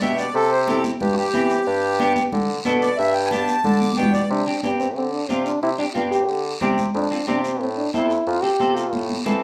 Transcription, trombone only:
4.31 4.61 D4 medium
4.63 4.71 D4 medium
4.80 4.87 C4 medium
4.97 5.15 C4 medium
5.13 5.31 D4 medium
5.30 5.47 C4 medium
5.46 5.62 D4 medium
5.63 5.70 E4 loud
5.78 5.86 D4 medium
5.95 6.02 F4 medium
6.11 6.42 G4 medium
6.96 7.26 D4 medium
7.28 7.43 D4 medium
7.44 7.60 C4 medium
7.61 7.68 C4 medium
7.77 7.93 D4 medium
7.94 8.29 E4 loud
8.27 8.45 F4 loud
8.43 8.77 G4 loud
8.76 9.09 F4 medium

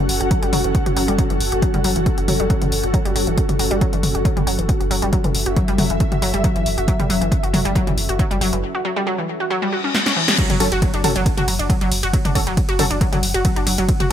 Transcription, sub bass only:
0.09 0.20 F#1 loud
0.20 0.31 F#1 medium
0.42 0.52 F#1 medium
0.53 0.64 F#1 loud
0.64 0.74 F#1 medium
0.86 0.96 F#1 medium
0.97 1.08 F#1 loud
1.08 1.18 F#1 medium
1.30 1.40 F#1 medium
1.40 1.51 F#1 loud
1.52 1.62 F#1 medium
1.74 1.84 F#1 medium
1.84 1.95 F#1 loud
1.96 2.06 F#1 medium
2.18 2.27 F#1 medium
2.28 2.39 F#1 loud
2.40 2.50 F#1 medium
2.62 2.71 F#1 medium
2.72 2.83 F#1 loud
2.83 2.93 F#1 medium
3.05 3.15 F#1 medium
3.16 3.27 F#1 loud
3.27 3.37 F#1 medium
3.49 3.59 F#1 medium
3.59 3.70 F#1 loud
3.71 3.81 F#1 medium
3.93 4.03 F#1 medium
4.03 4.14 F#1 loud
4.15 4.25 F#1 medium
4.37 4.46 F#1 medium
4.47 4.58 F#1 loud
4.59 4.69 F#1 medium
4.81 4.90 F#1 medium
4.91 5.02 F#1 loud
5.02 5.13 F#1 medium
5.24 5.34 F#1 medium
5.35 5.46 F#1 loud
5.46 5.56 F#1 medium
5.68 5.78 F#1 medium
5.78 5.89 F#1 medium
5.90 6.00 F#1 medium
6.12 6.21 F#1 medium
6.22 6.33 F#1 loud
6.34 6.44 F#1 medium
6.55 6.65 F#1 medium
6.66 6.77 F#1 loud
6.78 6.88 F#1 medium
6.99 7.09 F#1 medium
7.10 7.21 F#1 loud
7.21 7.31 F#1 medium
7.43 7.53 F#1 medium
7.53 7.65 F#1 loud
7.65 7.75 F#1 medium
7.87 7.97 F#1 medium
7.97 8.08 F#1 loud
8.09 8.19 F#1 medium
8.31 8.40 F#1 medium
8.41 8.52 F#1 loud
8.53 8.63 F#1 medium
10.50 10.60 F#1 medium
10.60 10.71 F#1 loud
10.72 10.82 F#1 medium
10.94 11.03 F#1 medium
11.04 11.15 F#1 loud
11.15 11.26 F#1 medium
11.37 11.47 F#1 medium
11.48 11.59 F#1 loud
11.59 11.69 F#1 medium
11.81 11.91 F#1 medium
11.91 12.02 F#1 loud
12.03 12.13 F#1 medium
12.25 12.35 F#1 medium
12.35 12.46 F#1 loud
12.47 12.57 F#1 medium
12.69 12.79 F#1 medium
12.79 12.90 F#1 loud
12.91 13.01 F#1 medium
13.13 13.22 F#1 medium
13.23 13.34 F#1 loud
13.34 13.45 F#1 medium
13.56 13.66 F#1 medium
13.67 13.78 F#1 loud
13.78 13.88 F#1 medium
14.00 14.10 F#1 medium

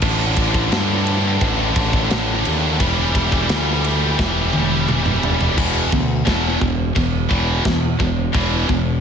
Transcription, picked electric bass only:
0.02 0.35 A1 loud
0.37 0.69 A1 medium
0.72 1.37 G2 loud
1.41 1.73 A1 loud
1.76 2.08 A1 medium
2.12 2.43 A1 medium
2.47 2.78 D#2 medium
2.81 3.12 E1 loud
3.15 3.47 E1 medium
3.50 4.15 D2 loud
4.19 4.51 E1 loud
4.55 4.87 E1 medium
4.89 5.21 E1 medium
5.23 5.55 E1 loud
5.58 5.87 E1 medium
5.93 6.21 D2 medium
6.27 6.56 E1 loud
6.62 6.90 E1 medium
6.96 7.25 E1 loud
7.31 7.60 E1 medium
7.65 7.94 E2 medium
8.00 8.29 E1 medium
8.35 8.64 E1 loud
8.69 8.98 E1 medium

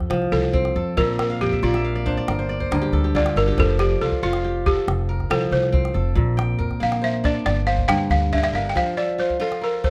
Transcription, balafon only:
0.00 0.35 C5 loud
0.32 1.00 A4 loud
0.98 1.19 A#4 loud
1.20 1.42 A#4 medium
1.41 1.51 G4 medium
1.63 2.03 F4 medium
3.16 3.38 D5 loud
3.37 3.59 A#4 loud
3.60 3.81 A4 loud
3.80 4.02 G4 medium
4.01 4.23 A4 medium
4.23 4.67 F4 medium
4.66 5.33 G4 medium
5.31 5.53 A4 loud
5.53 6.56 C5 medium
6.83 7.04 F5 medium
7.04 7.14 E5 medium
7.25 7.45 D5 medium
7.46 7.66 D5 medium
7.67 7.87 F5 medium
7.88 8.10 F5 loud
7.88 8.68 G5 loud
8.11 8.31 F5 loud
8.33 8.37 E5 medium
8.38 8.43 E5 medium
8.44 8.54 E5 loud
8.55 8.71 F5 medium
8.69 8.75 G5 medium
8.77 8.86 F5 loud
8.97 9.18 D5 medium
9.20 9.42 C5 medium
9.41 9.63 A4 medium
9.64 9.85 A#4 medium
9.84 9.90 C5 medium

